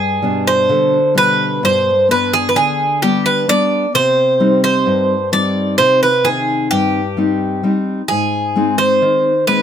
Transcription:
Already playing: G2 G#4
0.22 B2 G3 D4
0.47 C5
0.69 D3
1.14 B2 G3 D4 B4
1.63 G2 C5
2.09 B3 D4 B4
2.33 G#4
2.49 B4
2.55 D3 G#4
3.02 G3 B3 D4 G4
3.26 B4
3.48 G3 B3 D4 D5
3.94 C3 C5
4.40 G3 C4 D#4
4.64 C5
4.86 G2
5.32 G3 C4 D#4 D5
5.78 C3 C5
6.03 B4
6.24 D#3 C4 D#4 G#4
6.71 G2 G4
7.17 G3 C4 D#4
7.63 G3 C4 D#4
8.08 G#2 G#4
8.56 G#3 C4 D#4
8.78 C5
9.02 D#3
9.47 G#3 C4 D#4 B4

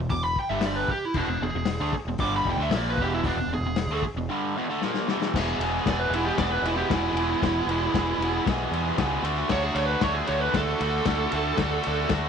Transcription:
0.00 E2 B2
0.09 E1 E2 B2 D6, kick, open hi-hat
0.24 B5
0.36 G5, kick
0.49 G1 G2 D3 G3 E5
0.61 snare, open hi-hat
0.66 D5
0.76 B4
0.88 G4, muted fingered electric bass stroke, muted overdriven electric guitar stroke, kick
1.05 E4
1.14 E1 E2 D4, kick, crash
1.18 B2
1.27 E1 E2 B2
1.41 E1 E2 B2 G#4
1.54 E1 E2 B2
1.65 snare, open hi-hat
1.80 D2 D3 A3
1.93 muted fingered electric bass stroke, muted overdriven electric guitar stroke, kick
2.05 E1 E2 B2
2.18 G1 G2 D3 G3 D6, kick, open hi-hat
2.36 B5
2.45 E1 E2 B2, kick
2.51 G5
2.57 D2 D3
2.61 A3 E5
2.69 A#1, snare, open hi-hat
2.74 A#2 F3 A#3 D5
2.90 B4
2.98 E1 E2 B2 E3 G4, kick
3.14 E4
3.24 E1 E2 B2 D4, kick, open hi-hat
3.35 E1
3.41 E2 B2
3.47 E1
3.53 E2 B2 G#4
3.60 E1
3.66 E2 B2
3.76 snare, open hi-hat
3.87 D2
3.91 D3 A3
4.02 muted fingered electric bass stroke, muted overdriven electric guitar stroke, kick
4.14 E1 E2 B2
4.29 G2 D3 G3
4.57 E2 B2
4.69 D3 A3
4.82 A#2 F3 A#3, snare
4.94 snare
5.08 E2 B2 E3, snare
5.22 snare
5.34 E1 E2 B2 E3 G#3, kick, snare, crash
5.38 B3 G#4
5.58 E1 E2 B2, ride
5.63 E3 G#3 B3 G#4
5.86 E1 E2 B2 E3 G#3 B3 D5, kick, snare, ride
5.90 G#4
5.99 B4
6.09 E1 E2 B2
6.13 E3 G#3 B3 E4 G#4, ride
6.25 G4
6.38 E1 E2 B2 E3 G#3 B3 D5, kick, snare, ride
6.43 G#4
6.51 B4
6.62 E1 E2 B2 E3 G#3 E4, ride
6.66 B3 G#4
6.77 G4
6.89 E1 E2 B2 E3 G#3 E4, kick, snare, ride
6.93 B3 G#4
7.13 E1 E2, ride
7.18 B2 E3 G#3 B3 G#4
7.42 E1 E2 B2 E3 G#3 B3, kick, snare, ride
7.46 G#4
7.67 E1 E2 B2 E3 G#3, ride
7.72 B3 G#4
7.94 E1 E2 B2 E3 G#3, kick, snare, ride
7.98 B3 G#4
8.18 E1 E2
8.22 B2 E3 G#3 B3 G#4, ride
8.46 B1 E2 B2 E3 G#3 B3, kick, snare, ride
8.51 G#4
8.71 E2 B2 E3 G#3, ride
8.75 B3 G#4
8.97 C#2 E2 B2 E3 G#3 B3 G#4, kick, snare, ride
9.22 D2 D3 A3 D4 F#4, ride
9.49 D2 D3 A3 D4 F#4 C#5, kick, snare, crash
9.64 G#4
9.75 D2 D3 A3 D4 F#4 C#5, ride
9.86 B4
10.01 D2 D3 A3 D4 F#4 C#5, kick, snare, ride
10.14 G#4
10.27 D2 D3 A3 D4 F#4 C#5, ride
10.41 B4
10.54 D2 D3 A3 D4 F#4 A4, kick, snare, ride
10.80 D2 D3 A3 D4 F#4, ride
11.05 D2 D3 A3 D4 F#4, kick, snare, ride
11.32 D2 D3 A3 D4 F#4, ride
11.57 D2 D3 A3 D4, kick, snare, ride
11.61 F#4
11.83 D2 D3 A3, ride
11.88 D4 F#4
12.09 D2 D3 A3, kick, snare, ride
12.14 D4 F#4

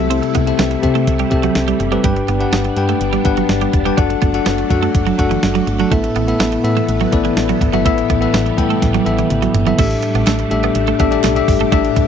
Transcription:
Already playing: C2 C3 G3 A3 C4 E4 G4 A4 E5
0.10 C4, closed hi-hat
0.23 muted clean electric guitar stroke, closed hi-hat
0.35 C2 B3, kick, closed hi-hat
0.46 C4 G4 A4 E5, closed hi-hat
0.59 C2 B3, snare, closed hi-hat
0.71 muted clean electric guitar stroke, closed hi-hat
0.82 C3 C4 G4 A4 E5, kick, closed hi-hat
0.95 A3, closed hi-hat
1.07 C2, kick, closed hi-hat
1.19 G3, closed hi-hat
1.30 C2 C4 G4 A4 E5, muted clean electric guitar stroke, kick, closed hi-hat
1.43 F#3, closed hi-hat
1.55 C2, snare, closed hi-hat
1.68 G3, closed hi-hat
1.80 F#1, muted clean electric guitar stroke, closed hi-hat
1.91 G3 C4 G4 A4 B4, closed hi-hat
2.04 G1 G2 G3 B3 D4 G4 B4 G5, kick, closed hi-hat
2.16 muted clean electric guitar stroke, closed hi-hat
2.28 G1 B3, closed hi-hat
2.40 D4 G4 B4 F#5, closed hi-hat
2.52 G1 B3, snare, closed hi-hat
2.64 muted clean electric guitar stroke, closed hi-hat
2.76 G2 D4 G4 B4 G5, closed hi-hat
2.89 A3, closed hi-hat
3.01 G1, closed hi-hat
3.13 G3, closed hi-hat
3.25 G1 D4 G4 B4 F#5, muted clean electric guitar stroke, kick, closed hi-hat
3.37 F#3, closed hi-hat
3.49 G1, snare, closed hi-hat
3.61 G3, closed hi-hat
3.73 E1, muted clean electric guitar stroke, kick, closed hi-hat
3.85 G3 D4 G4 B4 G5, closed hi-hat
3.97 F#1 F#3 A3 D4 F#4 A4 F#5, kick, closed hi-hat
4.10 muted clean electric guitar stroke, closed hi-hat
4.22 F#1 B3, kick, closed hi-hat
4.34 D4 F#4 A4 F#5, closed hi-hat
4.46 F#1 B3, snare, closed hi-hat
4.58 muted clean electric guitar stroke, closed hi-hat
4.70 F#2 D4 F#4 A4 F#5, kick, closed hi-hat
4.83 A3, closed hi-hat
4.95 F#1, kick, closed hi-hat
5.06 F#3, closed hi-hat
5.18 F#1 D4 F#4 A4 F#5, muted clean electric guitar stroke, kick, closed hi-hat
5.31 E3, closed hi-hat
5.43 F#1, snare, closed hi-hat
5.55 F#3, closed hi-hat
5.67 G1, muted clean electric guitar stroke, closed hi-hat
5.79 F#3 D4 F#4 A4 F#5, closed hi-hat
5.91 A1 A2 E3 A3 B3 E4 A4 E5, kick, closed hi-hat
6.04 muted clean electric guitar stroke, closed hi-hat
6.16 A1 B3, closed hi-hat
6.27 B3 E4 A4 E5, closed hi-hat
6.40 A1 B3, snare, closed hi-hat
6.52 muted clean electric guitar stroke, closed hi-hat
6.63 A2 B3 E4 A4 E5, closed hi-hat
6.77 A3, closed hi-hat
6.89 A1, closed hi-hat
7.01 F#3, closed hi-hat
7.12 A1 B3 E4 A4 D5, muted clean electric guitar stroke, kick, closed hi-hat
7.25 E3, closed hi-hat
7.37 A1, snare, closed hi-hat
7.49 F#3, closed hi-hat
7.61 G1, muted clean electric guitar stroke, kick, closed hi-hat
7.72 F#3 B3 E4 A4 E5, closed hi-hat
7.85 A1 A2 G3 A3 B3 E4 A4 E5, kick, closed hi-hat
7.98 muted clean electric guitar stroke, closed hi-hat
8.10 A1 B3, kick, closed hi-hat
8.21 B3 E4 A4 E5, closed hi-hat
8.34 A1 B3, snare, closed hi-hat
8.46 muted clean electric guitar stroke, closed hi-hat
8.57 A2 B3 E4 A4 G5, kick, closed hi-hat
8.70 A3, closed hi-hat
8.82 A1, kick, snare, closed hi-hat
8.94 F#3, closed hi-hat
9.05 A1 B3 E4 A4 E5, muted clean electric guitar stroke, closed hi-hat, high tom
9.18 E3, closed hi-hat, high tom
9.30 A1, closed hi-hat, mid tom
9.42 F#3, closed hi-hat
9.54 G1, muted clean electric guitar stroke, closed hi-hat, floor tom
9.66 F#3 B3 E4 A4 E5, closed hi-hat, floor tom
9.78 A1 A2 G3 A3 D4 G4 A4 E5, kick, closed hi-hat, crash
9.91 closed hi-hat
10.02 muted clean electric guitar stroke, closed hi-hat
10.15 A1 B3, closed hi-hat
10.27 A1 A3, snare, clap, closed hi-hat
10.39 muted clean electric guitar stroke, closed hi-hat
10.50 A1 D4 G4 A4 E5, closed hi-hat
10.63 B3, closed hi-hat
10.75 A1, muted clean electric guitar stroke, closed hi-hat
10.87 A3, closed hi-hat
10.99 A1 B3 D4 G4 A4 E5, kick, closed hi-hat
11.11 D4 G4 A4 E5, closed hi-hat
11.24 B1 A3, snare, clap, closed hi-hat
11.36 D4 G4 A4 E5, closed hi-hat
11.48 G1, muted clean electric guitar stroke, kick, open hi-hat
11.60 A3, closed hi-hat
11.72 A1 A2 A3 B3 D4 G4 A4 E5, kick, closed hi-hat
11.85 closed hi-hat
11.96 muted clean electric guitar stroke, kick, closed hi-hat

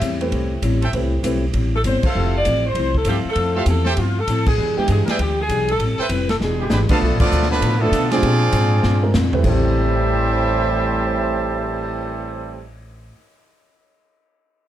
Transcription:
Already playing: E5
0.01 E2 A2 G3 C4 E4, kick, hi-hat pedal, ride
0.21 A3 C4 E4 G4 B4, ride
0.32 C2 A2 G3 C4 E4, kick, ride
0.62 A1 A2 G3 C4 E4, kick, hi-hat pedal, ride
0.81 A4 C5 E5 G5, ride
0.93 C2 A2 G3 A3 C4 E4 G4 B4, kick, ride
1.23 B1 A2 G3 A3 C4 E4 G4 B4, kick, hi-hat pedal, ride
1.53 A1 A2 G3 C4 E4, kick, ride
1.76 A4
1.84 G1 A2 G3 C4 E4 C5, kick, hi-hat pedal, ride
2.03 A4 C5 E5 F5, kick, crash
2.07 A4
2.14 F1 F3 A3 C4 E4 F4 G4
2.38 D5
2.45 A1 F3 A3 C4 E4, kick, hi-hat pedal, ride
2.67 C5
2.75 C2 F3 A3 C4, kick, ride
2.79 E4
2.95 A4, kick
3.05 G2 F3 A3 C4 E4 G4 A4 C5 E5 F5, kick, hi-hat pedal, ride
3.25 muted upright bass stroke
3.30 A4
3.35 F2 F3 A3 C4, kick, ride
3.40 E4
3.55 A3 C4 E4 F4 G4 A4 C5 E5 F5
3.66 E2 F3 A3 C4 E4 G#4 A4, kick, hi-hat pedal, ride
3.85 A4 C5 E5 G5, snare
3.90 G4
3.97 G2 F3 A3 C4 E4 F4, kick, ride
4.19 A4
4.27 A2 F3 A3 C4 E4, kick, hi-hat pedal, ride
4.46 G#4, kick, crash
4.57 E2 E3 G#3 D4 G4
4.77 G#3 B3 D4 E4 G4, muted upright bass stroke
4.88 G2 E3 G#3 D4 G4 G#4, kick, hi-hat pedal, ride
5.05 G#4 A#4 D5 E5 G5, muted upright bass stroke, snare, ride
5.09 B4
5.19 D2 E3 G#3 D4 G4, kick, ride
5.41 G#4
5.49 B1 E3 G#3 D4 G4, kick, hi-hat pedal, ride
5.68 A4, ride
5.79 A1 A2 G3 C4, kick, ride
5.83 E4
5.98 A4 B4 C5 E5 G5, muted upright bass stroke
6.09 F1 A2 G3 C4 E4, kick, hi-hat pedal, ride
6.29 A4, snare, ride
6.39 E1 B2 D3 E3 G#3 G#4, snare
6.44 D4 G4
6.58 B2 D3 G3 G#3 B3 G4
6.69 G#1 D3 E3 G#3 B3 D4 G4 B4, snare, hi-hat pedal
6.88 D3 F3 A3 B3 D4 F4 A4 B4 D5 F5 A5, kick, crash
7.01 B1 B2 A3 D4 F4
7.12 A1
7.20 F1 F3 A3 B3 D4 F4 A4 D5, kick, crash
7.32 D2 B2 A3 D4 F4, hi-hat pedal
7.43 snare
7.48 D3 F3 A3 B3 D4 F4 B4
7.53 snare
7.61 A2 B2 A3 D4 F4, kick, ride
7.78 D3 F3 A3 B3 D4 F4 A4
7.83 D4 A4
7.92 B2 A3 D4 F4, kick, hi-hat pedal, ride
8.10 F3 G#3 C4 D4 F4 G4 G#4 D5, snare, ride
8.22 A#2 G#3 C4 D4, kick, ride
8.52 G#2 A#2 G#3 C4 D4, kick, hi-hat pedal, ride
8.83 G2 A#2 G#3 C4 D4, snare
9.03 G#3 C4 D4 F4 A#4
9.14 F2 A#2 G#3 C4 D4, snare, hi-hat pedal
9.33 A3 C4 E4 G4 B4, floor tom
9.43 A1 A2 E3 G3 A3 C4 G4 C5 E5 A5, kick, crash
9.47 G3 C4
9.55 E4
9.63 cymbal swell

